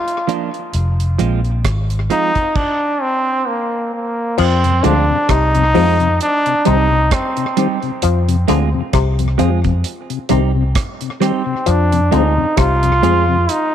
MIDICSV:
0, 0, Header, 1, 7, 480
1, 0, Start_track
1, 0, Tempo, 911023
1, 388, Time_signature, 4, 2, 24, 8
1, 7244, End_track
2, 0, Start_track
2, 0, Title_t, "Trombone"
2, 0, Program_c, 0, 57
2, 0, Note_on_c, 0, 65, 85
2, 151, Note_off_c, 0, 65, 0
2, 1113, Note_on_c, 0, 63, 112
2, 1350, Note_on_c, 0, 62, 102
2, 1358, Note_off_c, 0, 63, 0
2, 1591, Note_on_c, 0, 60, 101
2, 1599, Note_off_c, 0, 62, 0
2, 1831, Note_on_c, 0, 58, 77
2, 1839, Note_off_c, 0, 60, 0
2, 2070, Note_off_c, 0, 58, 0
2, 2077, Note_on_c, 0, 58, 81
2, 2321, Note_on_c, 0, 60, 104
2, 2329, Note_off_c, 0, 58, 0
2, 2555, Note_on_c, 0, 62, 94
2, 2563, Note_off_c, 0, 60, 0
2, 2799, Note_on_c, 0, 63, 116
2, 2807, Note_off_c, 0, 62, 0
2, 3273, Note_off_c, 0, 63, 0
2, 3279, Note_on_c, 0, 62, 115
2, 3519, Note_on_c, 0, 63, 114
2, 3526, Note_off_c, 0, 62, 0
2, 3759, Note_on_c, 0, 60, 87
2, 3767, Note_off_c, 0, 63, 0
2, 4129, Note_off_c, 0, 60, 0
2, 5920, Note_on_c, 0, 60, 77
2, 6155, Note_on_c, 0, 62, 92
2, 6163, Note_off_c, 0, 60, 0
2, 6397, Note_on_c, 0, 63, 87
2, 6405, Note_off_c, 0, 62, 0
2, 6637, Note_on_c, 0, 65, 99
2, 6645, Note_off_c, 0, 63, 0
2, 7117, Note_on_c, 0, 63, 97
2, 7125, Note_off_c, 0, 65, 0
2, 7244, Note_off_c, 0, 63, 0
2, 7244, End_track
3, 0, Start_track
3, 0, Title_t, "Clean electric guitar"
3, 0, Program_c, 1, 27
3, 145, Note_on_c, 1, 53, 79
3, 148, Note_on_c, 1, 58, 81
3, 150, Note_on_c, 1, 62, 85
3, 152, Note_on_c, 1, 65, 91
3, 254, Note_off_c, 1, 53, 0
3, 256, Note_off_c, 1, 58, 0
3, 257, Note_off_c, 1, 62, 0
3, 258, Note_off_c, 1, 65, 0
3, 624, Note_on_c, 1, 53, 76
3, 627, Note_on_c, 1, 56, 88
3, 629, Note_on_c, 1, 60, 84
3, 631, Note_on_c, 1, 65, 86
3, 734, Note_off_c, 1, 53, 0
3, 735, Note_off_c, 1, 56, 0
3, 736, Note_off_c, 1, 60, 0
3, 737, Note_off_c, 1, 65, 0
3, 1106, Note_on_c, 1, 53, 75
3, 1108, Note_on_c, 1, 56, 80
3, 1111, Note_on_c, 1, 60, 83
3, 1114, Note_on_c, 1, 65, 89
3, 1215, Note_off_c, 1, 53, 0
3, 1216, Note_off_c, 1, 56, 0
3, 1217, Note_off_c, 1, 60, 0
3, 1219, Note_off_c, 1, 65, 0
3, 2549, Note_on_c, 1, 53, 84
3, 2551, Note_on_c, 1, 56, 89
3, 2554, Note_on_c, 1, 60, 94
3, 2557, Note_on_c, 1, 65, 104
3, 2656, Note_off_c, 1, 53, 0
3, 2657, Note_off_c, 1, 56, 0
3, 2658, Note_off_c, 1, 60, 0
3, 2660, Note_off_c, 1, 65, 0
3, 3028, Note_on_c, 1, 53, 81
3, 3030, Note_on_c, 1, 56, 89
3, 3033, Note_on_c, 1, 60, 91
3, 3035, Note_on_c, 1, 65, 82
3, 3135, Note_off_c, 1, 53, 0
3, 3136, Note_off_c, 1, 56, 0
3, 3138, Note_off_c, 1, 60, 0
3, 3139, Note_off_c, 1, 65, 0
3, 3506, Note_on_c, 1, 55, 84
3, 3509, Note_on_c, 1, 60, 94
3, 3511, Note_on_c, 1, 63, 90
3, 3512, Note_on_c, 1, 67, 90
3, 3614, Note_off_c, 1, 55, 0
3, 3616, Note_off_c, 1, 60, 0
3, 3617, Note_off_c, 1, 63, 0
3, 3617, Note_off_c, 1, 67, 0
3, 3987, Note_on_c, 1, 55, 79
3, 3991, Note_on_c, 1, 60, 73
3, 3994, Note_on_c, 1, 63, 78
3, 3996, Note_on_c, 1, 67, 85
3, 4095, Note_off_c, 1, 55, 0
3, 4097, Note_off_c, 1, 60, 0
3, 4098, Note_off_c, 1, 63, 0
3, 4099, Note_off_c, 1, 67, 0
3, 4467, Note_on_c, 1, 56, 87
3, 4469, Note_on_c, 1, 60, 94
3, 4473, Note_on_c, 1, 65, 89
3, 4474, Note_on_c, 1, 68, 101
3, 4574, Note_off_c, 1, 56, 0
3, 4576, Note_off_c, 1, 60, 0
3, 4577, Note_off_c, 1, 65, 0
3, 4578, Note_off_c, 1, 68, 0
3, 4942, Note_on_c, 1, 56, 95
3, 4944, Note_on_c, 1, 60, 83
3, 4948, Note_on_c, 1, 65, 92
3, 4949, Note_on_c, 1, 68, 90
3, 5052, Note_off_c, 1, 56, 0
3, 5053, Note_off_c, 1, 60, 0
3, 5055, Note_off_c, 1, 65, 0
3, 5055, Note_off_c, 1, 68, 0
3, 5424, Note_on_c, 1, 55, 80
3, 5428, Note_on_c, 1, 60, 101
3, 5431, Note_on_c, 1, 63, 94
3, 5433, Note_on_c, 1, 67, 89
3, 5533, Note_off_c, 1, 55, 0
3, 5534, Note_off_c, 1, 60, 0
3, 5536, Note_off_c, 1, 63, 0
3, 5537, Note_off_c, 1, 67, 0
3, 5904, Note_on_c, 1, 55, 80
3, 5909, Note_on_c, 1, 60, 87
3, 5910, Note_on_c, 1, 63, 90
3, 5912, Note_on_c, 1, 67, 106
3, 6012, Note_off_c, 1, 55, 0
3, 6015, Note_off_c, 1, 60, 0
3, 6015, Note_off_c, 1, 63, 0
3, 6016, Note_off_c, 1, 67, 0
3, 6382, Note_on_c, 1, 56, 75
3, 6387, Note_on_c, 1, 60, 88
3, 6388, Note_on_c, 1, 65, 96
3, 6391, Note_on_c, 1, 68, 95
3, 6491, Note_off_c, 1, 56, 0
3, 6494, Note_off_c, 1, 60, 0
3, 6494, Note_off_c, 1, 65, 0
3, 6496, Note_off_c, 1, 68, 0
3, 6863, Note_on_c, 1, 56, 85
3, 6865, Note_on_c, 1, 60, 87
3, 6869, Note_on_c, 1, 65, 88
3, 6870, Note_on_c, 1, 68, 87
3, 6971, Note_off_c, 1, 56, 0
3, 6973, Note_off_c, 1, 60, 0
3, 6975, Note_off_c, 1, 65, 0
3, 6975, Note_off_c, 1, 68, 0
3, 7244, End_track
4, 0, Start_track
4, 0, Title_t, "Clav"
4, 0, Program_c, 2, 7
4, 2307, Note_on_c, 2, 53, 99
4, 2451, Note_off_c, 2, 53, 0
4, 2545, Note_on_c, 2, 50, 72
4, 2627, Note_off_c, 2, 50, 0
4, 2786, Note_on_c, 2, 48, 74
4, 2930, Note_off_c, 2, 48, 0
4, 3027, Note_on_c, 2, 53, 75
4, 3171, Note_off_c, 2, 53, 0
4, 3505, Note_on_c, 2, 48, 79
4, 3650, Note_off_c, 2, 48, 0
4, 4230, Note_on_c, 2, 53, 93
4, 4373, Note_off_c, 2, 53, 0
4, 4469, Note_on_c, 2, 50, 80
4, 4550, Note_off_c, 2, 50, 0
4, 4707, Note_on_c, 2, 48, 76
4, 4851, Note_off_c, 2, 48, 0
4, 4947, Note_on_c, 2, 53, 74
4, 5091, Note_off_c, 2, 53, 0
4, 5422, Note_on_c, 2, 48, 70
4, 5567, Note_off_c, 2, 48, 0
4, 6144, Note_on_c, 2, 53, 88
4, 6289, Note_off_c, 2, 53, 0
4, 6386, Note_on_c, 2, 50, 75
4, 6467, Note_off_c, 2, 50, 0
4, 6623, Note_on_c, 2, 48, 76
4, 6767, Note_off_c, 2, 48, 0
4, 6865, Note_on_c, 2, 53, 74
4, 7009, Note_off_c, 2, 53, 0
4, 7244, End_track
5, 0, Start_track
5, 0, Title_t, "Tonewheel organ"
5, 0, Program_c, 3, 16
5, 2445, Note_on_c, 3, 41, 65
5, 2446, Note_on_c, 3, 48, 62
5, 2489, Note_off_c, 3, 41, 0
5, 2490, Note_off_c, 3, 48, 0
5, 2546, Note_on_c, 3, 53, 73
5, 2549, Note_on_c, 3, 56, 65
5, 2550, Note_on_c, 3, 60, 85
5, 2606, Note_off_c, 3, 53, 0
5, 2607, Note_off_c, 3, 56, 0
5, 2608, Note_off_c, 3, 60, 0
5, 2685, Note_on_c, 3, 41, 61
5, 2685, Note_on_c, 3, 48, 55
5, 2729, Note_off_c, 3, 41, 0
5, 2730, Note_off_c, 3, 48, 0
5, 2923, Note_on_c, 3, 41, 57
5, 2924, Note_on_c, 3, 48, 59
5, 2968, Note_off_c, 3, 41, 0
5, 2969, Note_off_c, 3, 48, 0
5, 3027, Note_on_c, 3, 53, 72
5, 3028, Note_on_c, 3, 56, 66
5, 3030, Note_on_c, 3, 60, 82
5, 3086, Note_off_c, 3, 53, 0
5, 3087, Note_off_c, 3, 56, 0
5, 3088, Note_off_c, 3, 60, 0
5, 3162, Note_on_c, 3, 41, 66
5, 3162, Note_on_c, 3, 48, 66
5, 3208, Note_off_c, 3, 41, 0
5, 3208, Note_off_c, 3, 48, 0
5, 3405, Note_on_c, 3, 48, 59
5, 3450, Note_off_c, 3, 48, 0
5, 3506, Note_on_c, 3, 51, 84
5, 3507, Note_on_c, 3, 55, 77
5, 3509, Note_on_c, 3, 60, 94
5, 3566, Note_off_c, 3, 51, 0
5, 3566, Note_off_c, 3, 55, 0
5, 3567, Note_off_c, 3, 60, 0
5, 3644, Note_on_c, 3, 48, 60
5, 3689, Note_off_c, 3, 48, 0
5, 3885, Note_on_c, 3, 48, 63
5, 3929, Note_off_c, 3, 48, 0
5, 3987, Note_on_c, 3, 51, 81
5, 3988, Note_on_c, 3, 55, 63
5, 3989, Note_on_c, 3, 60, 83
5, 4046, Note_off_c, 3, 51, 0
5, 4047, Note_off_c, 3, 55, 0
5, 4047, Note_off_c, 3, 60, 0
5, 4126, Note_on_c, 3, 48, 61
5, 4170, Note_off_c, 3, 48, 0
5, 4363, Note_on_c, 3, 48, 66
5, 4364, Note_on_c, 3, 41, 59
5, 4408, Note_off_c, 3, 48, 0
5, 4409, Note_off_c, 3, 41, 0
5, 4468, Note_on_c, 3, 53, 70
5, 4469, Note_on_c, 3, 56, 66
5, 4471, Note_on_c, 3, 60, 75
5, 4526, Note_off_c, 3, 53, 0
5, 4527, Note_off_c, 3, 56, 0
5, 4528, Note_off_c, 3, 60, 0
5, 4607, Note_on_c, 3, 41, 55
5, 4607, Note_on_c, 3, 48, 65
5, 4650, Note_off_c, 3, 41, 0
5, 4650, Note_off_c, 3, 48, 0
5, 4844, Note_on_c, 3, 41, 54
5, 4844, Note_on_c, 3, 48, 57
5, 4888, Note_off_c, 3, 48, 0
5, 4889, Note_off_c, 3, 41, 0
5, 4944, Note_on_c, 3, 53, 76
5, 4946, Note_on_c, 3, 56, 77
5, 4946, Note_on_c, 3, 60, 89
5, 5004, Note_off_c, 3, 53, 0
5, 5005, Note_off_c, 3, 56, 0
5, 5005, Note_off_c, 3, 60, 0
5, 5082, Note_on_c, 3, 41, 65
5, 5082, Note_on_c, 3, 48, 65
5, 5127, Note_off_c, 3, 41, 0
5, 5128, Note_off_c, 3, 48, 0
5, 5322, Note_on_c, 3, 48, 56
5, 5367, Note_off_c, 3, 48, 0
5, 5425, Note_on_c, 3, 51, 76
5, 5426, Note_on_c, 3, 55, 79
5, 5428, Note_on_c, 3, 60, 91
5, 5485, Note_off_c, 3, 51, 0
5, 5485, Note_off_c, 3, 55, 0
5, 5486, Note_off_c, 3, 60, 0
5, 5561, Note_on_c, 3, 48, 65
5, 5607, Note_off_c, 3, 48, 0
5, 5802, Note_on_c, 3, 48, 53
5, 5847, Note_off_c, 3, 48, 0
5, 5903, Note_on_c, 3, 51, 76
5, 5903, Note_on_c, 3, 55, 70
5, 5906, Note_on_c, 3, 60, 94
5, 5963, Note_off_c, 3, 51, 0
5, 5964, Note_off_c, 3, 55, 0
5, 5965, Note_off_c, 3, 60, 0
5, 6039, Note_on_c, 3, 48, 71
5, 6086, Note_off_c, 3, 48, 0
5, 6283, Note_on_c, 3, 41, 61
5, 6283, Note_on_c, 3, 48, 64
5, 6327, Note_off_c, 3, 48, 0
5, 6328, Note_off_c, 3, 41, 0
5, 6384, Note_on_c, 3, 53, 76
5, 6385, Note_on_c, 3, 56, 65
5, 6387, Note_on_c, 3, 60, 76
5, 6444, Note_off_c, 3, 53, 0
5, 6444, Note_off_c, 3, 56, 0
5, 6445, Note_off_c, 3, 60, 0
5, 6520, Note_on_c, 3, 48, 56
5, 6521, Note_on_c, 3, 41, 58
5, 6566, Note_off_c, 3, 41, 0
5, 6566, Note_off_c, 3, 48, 0
5, 6760, Note_on_c, 3, 41, 59
5, 6760, Note_on_c, 3, 48, 60
5, 6806, Note_off_c, 3, 41, 0
5, 6806, Note_off_c, 3, 48, 0
5, 6865, Note_on_c, 3, 53, 72
5, 6866, Note_on_c, 3, 56, 72
5, 6868, Note_on_c, 3, 60, 85
5, 6924, Note_off_c, 3, 53, 0
5, 6925, Note_off_c, 3, 56, 0
5, 6925, Note_off_c, 3, 60, 0
5, 7001, Note_on_c, 3, 41, 67
5, 7002, Note_on_c, 3, 48, 66
5, 7046, Note_off_c, 3, 41, 0
5, 7047, Note_off_c, 3, 48, 0
5, 7244, End_track
6, 0, Start_track
6, 0, Title_t, "Fingered electric bass"
6, 0, Program_c, 4, 33
6, 391, Note_on_c, 4, 29, 96
6, 616, Note_off_c, 4, 29, 0
6, 636, Note_on_c, 4, 34, 90
6, 858, Note_off_c, 4, 34, 0
6, 871, Note_on_c, 4, 32, 83
6, 1096, Note_off_c, 4, 32, 0
6, 2314, Note_on_c, 4, 41, 105
6, 2537, Note_off_c, 4, 41, 0
6, 2556, Note_on_c, 4, 38, 94
6, 2680, Note_off_c, 4, 38, 0
6, 2793, Note_on_c, 4, 36, 104
6, 3016, Note_off_c, 4, 36, 0
6, 3037, Note_on_c, 4, 41, 78
6, 3258, Note_off_c, 4, 41, 0
6, 3517, Note_on_c, 4, 36, 90
6, 3739, Note_off_c, 4, 36, 0
6, 4236, Note_on_c, 4, 41, 108
6, 4458, Note_off_c, 4, 41, 0
6, 4476, Note_on_c, 4, 38, 90
6, 4599, Note_off_c, 4, 38, 0
6, 4712, Note_on_c, 4, 36, 100
6, 4935, Note_off_c, 4, 36, 0
6, 4955, Note_on_c, 4, 41, 84
6, 5177, Note_off_c, 4, 41, 0
6, 5436, Note_on_c, 4, 36, 84
6, 5657, Note_off_c, 4, 36, 0
6, 6152, Note_on_c, 4, 41, 116
6, 6375, Note_off_c, 4, 41, 0
6, 6394, Note_on_c, 4, 38, 88
6, 6518, Note_off_c, 4, 38, 0
6, 6629, Note_on_c, 4, 36, 100
6, 6854, Note_off_c, 4, 36, 0
6, 6870, Note_on_c, 4, 41, 90
6, 7094, Note_off_c, 4, 41, 0
6, 7244, End_track
7, 0, Start_track
7, 0, Title_t, "Drums"
7, 40, Note_on_c, 9, 42, 52
7, 93, Note_off_c, 9, 42, 0
7, 151, Note_on_c, 9, 42, 75
7, 204, Note_off_c, 9, 42, 0
7, 285, Note_on_c, 9, 42, 33
7, 337, Note_off_c, 9, 42, 0
7, 387, Note_on_c, 9, 42, 82
7, 440, Note_off_c, 9, 42, 0
7, 527, Note_on_c, 9, 42, 56
7, 579, Note_off_c, 9, 42, 0
7, 628, Note_on_c, 9, 42, 65
7, 680, Note_off_c, 9, 42, 0
7, 761, Note_on_c, 9, 42, 30
7, 814, Note_off_c, 9, 42, 0
7, 867, Note_on_c, 9, 36, 89
7, 867, Note_on_c, 9, 42, 88
7, 869, Note_on_c, 9, 37, 97
7, 919, Note_off_c, 9, 42, 0
7, 920, Note_off_c, 9, 36, 0
7, 922, Note_off_c, 9, 37, 0
7, 1001, Note_on_c, 9, 42, 51
7, 1054, Note_off_c, 9, 42, 0
7, 1108, Note_on_c, 9, 42, 61
7, 1161, Note_off_c, 9, 42, 0
7, 1240, Note_on_c, 9, 42, 32
7, 1242, Note_on_c, 9, 36, 62
7, 1292, Note_off_c, 9, 42, 0
7, 1295, Note_off_c, 9, 36, 0
7, 1346, Note_on_c, 9, 49, 74
7, 1347, Note_on_c, 9, 36, 104
7, 1398, Note_off_c, 9, 49, 0
7, 1399, Note_off_c, 9, 36, 0
7, 2308, Note_on_c, 9, 49, 106
7, 2361, Note_off_c, 9, 49, 0
7, 2446, Note_on_c, 9, 42, 54
7, 2498, Note_off_c, 9, 42, 0
7, 2550, Note_on_c, 9, 42, 74
7, 2603, Note_off_c, 9, 42, 0
7, 2787, Note_on_c, 9, 42, 90
7, 2788, Note_on_c, 9, 36, 105
7, 2790, Note_on_c, 9, 37, 100
7, 2840, Note_off_c, 9, 42, 0
7, 2841, Note_off_c, 9, 36, 0
7, 2842, Note_off_c, 9, 37, 0
7, 2922, Note_on_c, 9, 42, 55
7, 2975, Note_off_c, 9, 42, 0
7, 3029, Note_on_c, 9, 46, 47
7, 3082, Note_off_c, 9, 46, 0
7, 3162, Note_on_c, 9, 42, 34
7, 3214, Note_off_c, 9, 42, 0
7, 3270, Note_on_c, 9, 42, 91
7, 3322, Note_off_c, 9, 42, 0
7, 3403, Note_on_c, 9, 42, 51
7, 3456, Note_off_c, 9, 42, 0
7, 3505, Note_on_c, 9, 42, 80
7, 3558, Note_off_c, 9, 42, 0
7, 3748, Note_on_c, 9, 42, 86
7, 3749, Note_on_c, 9, 36, 89
7, 3752, Note_on_c, 9, 37, 127
7, 3800, Note_off_c, 9, 42, 0
7, 3802, Note_off_c, 9, 36, 0
7, 3804, Note_off_c, 9, 37, 0
7, 3881, Note_on_c, 9, 42, 53
7, 3934, Note_off_c, 9, 42, 0
7, 3989, Note_on_c, 9, 42, 83
7, 4041, Note_off_c, 9, 42, 0
7, 4123, Note_on_c, 9, 42, 31
7, 4176, Note_off_c, 9, 42, 0
7, 4227, Note_on_c, 9, 42, 97
7, 4279, Note_off_c, 9, 42, 0
7, 4366, Note_on_c, 9, 42, 61
7, 4419, Note_off_c, 9, 42, 0
7, 4470, Note_on_c, 9, 42, 78
7, 4522, Note_off_c, 9, 42, 0
7, 4706, Note_on_c, 9, 42, 92
7, 4708, Note_on_c, 9, 36, 104
7, 4709, Note_on_c, 9, 37, 99
7, 4759, Note_off_c, 9, 42, 0
7, 4761, Note_off_c, 9, 36, 0
7, 4761, Note_off_c, 9, 37, 0
7, 4842, Note_on_c, 9, 42, 57
7, 4894, Note_off_c, 9, 42, 0
7, 4947, Note_on_c, 9, 42, 62
7, 5000, Note_off_c, 9, 42, 0
7, 5080, Note_on_c, 9, 42, 37
7, 5082, Note_on_c, 9, 36, 68
7, 5133, Note_off_c, 9, 42, 0
7, 5135, Note_off_c, 9, 36, 0
7, 5185, Note_on_c, 9, 42, 84
7, 5238, Note_off_c, 9, 42, 0
7, 5321, Note_on_c, 9, 42, 50
7, 5374, Note_off_c, 9, 42, 0
7, 5421, Note_on_c, 9, 42, 84
7, 5474, Note_off_c, 9, 42, 0
7, 5665, Note_on_c, 9, 42, 93
7, 5667, Note_on_c, 9, 36, 110
7, 5669, Note_on_c, 9, 37, 123
7, 5718, Note_off_c, 9, 42, 0
7, 5719, Note_off_c, 9, 36, 0
7, 5722, Note_off_c, 9, 37, 0
7, 5799, Note_on_c, 9, 42, 52
7, 5852, Note_off_c, 9, 42, 0
7, 5909, Note_on_c, 9, 42, 81
7, 5910, Note_on_c, 9, 37, 61
7, 5962, Note_off_c, 9, 37, 0
7, 5962, Note_off_c, 9, 42, 0
7, 6145, Note_on_c, 9, 42, 86
7, 6198, Note_off_c, 9, 42, 0
7, 6283, Note_on_c, 9, 42, 59
7, 6335, Note_off_c, 9, 42, 0
7, 6388, Note_on_c, 9, 42, 71
7, 6441, Note_off_c, 9, 42, 0
7, 6625, Note_on_c, 9, 42, 98
7, 6626, Note_on_c, 9, 36, 103
7, 6627, Note_on_c, 9, 37, 105
7, 6678, Note_off_c, 9, 42, 0
7, 6679, Note_off_c, 9, 36, 0
7, 6680, Note_off_c, 9, 37, 0
7, 6759, Note_on_c, 9, 42, 52
7, 6812, Note_off_c, 9, 42, 0
7, 6868, Note_on_c, 9, 42, 62
7, 6920, Note_off_c, 9, 42, 0
7, 7107, Note_on_c, 9, 42, 97
7, 7160, Note_off_c, 9, 42, 0
7, 7244, End_track
0, 0, End_of_file